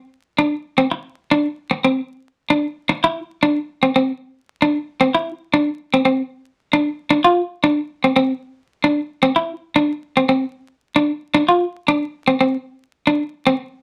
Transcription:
0.38 0.54 D4 medium
0.78 0.86 C4 medium
0.92 muted clean electric guitar stroke medium
1.31 1.47 D4 medium
1.71 muted clean electric guitar stroke medium
1.84 2.00 C4 medium
2.50 2.66 D4 medium
2.89 muted clean electric guitar stroke medium
3.04 3.19 E4 medium
3.43 3.58 D4 medium
3.83 3.90 C4 medium
3.96 4.11 C4 medium
4.62 4.78 D4 medium
5.01 5.09 C4 loud
5.15 5.30 E4 medium
5.53 5.69 D4 medium
5.94 6.01 C4 medium
6.05 6.21 C4 medium
6.73 6.89 D4 medium
7.10 7.19 D4 medium
7.24 7.40 F4 medium
7.64 7.80 D4 medium
8.04 8.12 C4 medium
8.16 8.32 C4 medium
8.84 9.00 D4 medium
9.23 9.31 C4 loud
9.36 9.52 E4 medium
9.76 9.91 D4 medium
10.17 10.24 C4 medium
10.29 10.45 C4 medium
10.96 11.11 D4 medium
11.34 11.43 D4 loud
11.49 11.64 F4 medium
11.88 12.04 D4 medium
12.28 12.35 C4 medium
12.41 12.56 C4 medium
13.07 13.23 D4 medium
13.47 13.54 C4 medium

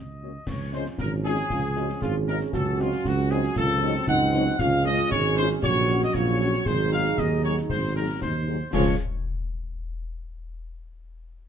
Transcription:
0.00 0.38 C#2 soft
0.00 0.43 D#5 medium
0.21 0.31 A#3 soft
0.21 0.31 C#4 soft
0.21 0.31 F#4 soft
0.21 0.31 C#5 soft
0.46 0.85 C#2 medium
0.46 2.49 F3 medium
0.46 3.53 C#4 medium
0.46 0.73 C#5 medium
0.46 concert bass drum medium
0.46 snare medium
0.46 crash medium
0.73 0.82 G#3 medium
0.73 0.82 C#4 medium
0.73 0.82 F4 medium
0.73 0.85 C5 medium
0.73 snare medium
0.86 snare medium
0.98 1.42 G#1 medium
0.98 1.47 C#4 medium
0.98 1.10 A#4 loud
0.98 concert bass drum medium
0.98 snare medium
1.24 1.34 G#3 medium
1.24 1.34 C#4 medium
1.24 1.34 F4 medium
1.24 1.98 G#4 loud
1.24 snare medium
1.37 snare soft
1.50 1.93 C#2 medium
1.50 1.62 F4 medium
1.50 concert bass drum medium
1.50 snare medium
1.76 1.86 G#3 medium
1.76 1.86 C#4 medium
1.76 1.85 F4 medium
1.76 1.88 F#4 medium
1.76 snare medium
1.89 snare medium
2.02 2.45 G#1 medium
2.02 2.13 F4 loud
2.02 2.50 G#4 loud
2.02 concert bass drum medium
2.02 snare medium
2.27 2.37 G#3 medium
2.27 2.37 C#4 medium
2.27 2.37 F4 medium
2.27 2.40 A#4 loud
2.27 snare medium
2.41 snare medium
2.53 2.96 C#2 medium
2.53 4.56 F#3 medium
2.53 3.58 F#4 loud
2.53 2.78 A4 medium
2.53 concert bass drum medium
2.53 snare medium
2.79 2.89 F#3 medium
2.79 2.89 C4 medium
2.79 2.89 D#4 medium
2.79 3.06 F4 loud
2.79 snare medium
2.92 snare medium
3.05 3.48 C#2 medium
3.05 3.32 F#4 loud
3.05 concert bass drum medium
3.05 snare medium
3.30 3.40 F#3 medium
3.30 3.40 C4 medium
3.30 3.40 D#4 medium
3.30 3.57 G#4 loud
3.30 snare medium
3.44 snare medium
3.56 4.00 C#2 medium
3.56 4.60 C4 medium
3.56 3.82 F4 medium
3.56 4.05 A4 loud
3.56 concert bass drum medium
3.56 snare medium
3.82 3.92 F#3 medium
3.82 3.92 C4 medium
3.82 3.92 D#4 medium
3.82 3.95 D#4 medium
3.82 snare medium
3.95 snare medium
4.07 4.52 C#2 medium
4.07 4.56 D#4 loud
4.07 4.56 F#5 loud
4.07 concert bass drum medium
4.07 snare medium
4.34 4.44 F#3 medium
4.34 4.44 C4 medium
4.34 4.44 D#4 medium
4.34 snare medium
4.47 snare medium
4.59 5.03 C#2 loud
4.59 5.60 G#3 medium
4.59 6.63 C#4 medium
4.59 5.13 F4 loud
4.59 4.86 F5 loud
4.59 concert bass drum medium
4.59 snare medium
4.59 crash soft
4.85 4.95 G#3 medium
4.85 4.95 C#4 medium
4.85 4.95 F4 medium
4.85 5.10 D#5 loud
4.85 snare medium
4.98 snare medium
5.11 5.55 G#1 medium
5.11 5.65 G#4 loud
5.11 5.36 C#5 loud
5.11 concert bass drum medium
5.11 snare medium
5.37 5.47 G#3 medium
5.37 5.47 C#4 medium
5.37 5.47 F4 medium
5.37 5.49 C5 loud
5.37 snare medium
5.50 snare medium
5.63 6.07 A#1 medium
5.63 6.65 F#3 medium
5.63 6.16 F#4 loud
5.63 5.99 C#5 loud
5.63 concert bass drum medium
5.63 snare medium
5.89 5.99 F#3 medium
5.89 5.99 C#4 medium
5.89 5.99 F#4 medium
5.89 snare medium
6.02 6.15 D#5 loud
6.02 snare medium
6.13 6.58 A#1 loud
6.13 6.42 F4 loud
6.13 6.66 C#5 loud
6.13 concert bass drum medium
6.13 snare medium
6.40 6.51 F#3 medium
6.40 6.51 C#4 medium
6.40 6.68 F#4 medium
6.40 6.51 F#4 medium
6.40 snare medium
6.53 snare medium
6.66 7.10 G#1 medium
6.66 8.44 F#3 medium
6.66 8.44 D#4 medium
6.66 7.94 G#4 loud
6.66 6.92 C5 loud
6.66 concert bass drum medium
6.66 snare medium
6.92 7.02 F#3 medium
6.92 7.02 D#4 medium
6.92 7.02 G#4 medium
6.92 7.16 F5 loud
6.92 snare medium
7.05 snare medium
7.18 7.62 D#2 medium
7.18 7.44 D#5 loud
7.18 concert bass drum medium
7.18 snare medium
7.44 7.54 F#3 medium
7.44 7.54 D#4 medium
7.44 7.54 G#4 medium
7.44 7.56 C#5 loud
7.44 snare medium
7.57 snare medium
7.70 8.14 G#1 medium
7.70 7.94 C5 loud
7.70 concert bass drum medium
7.70 snare medium
7.95 8.05 F#3 medium
7.95 8.05 D#4 medium
7.95 8.05 G#4 medium
7.95 8.20 A#4 medium
8.21 8.61 D#2 medium
8.21 8.46 D#4 medium
8.21 8.70 C5 medium
8.21 concert bass drum medium
8.21 snare medium
8.47 8.57 F#3 medium
8.47 8.57 D#4 medium
8.47 8.57 G#4 medium
8.72 8.95 C#2 medium
8.72 8.95 F3 medium
8.72 8.95 G#3 medium
8.72 8.95 C#4 medium
8.72 8.94 F4 medium
8.72 8.95 G#4 medium
8.72 8.95 C#5 loud
8.72 concert bass drum loud
8.72 snare loud
8.72 crash medium

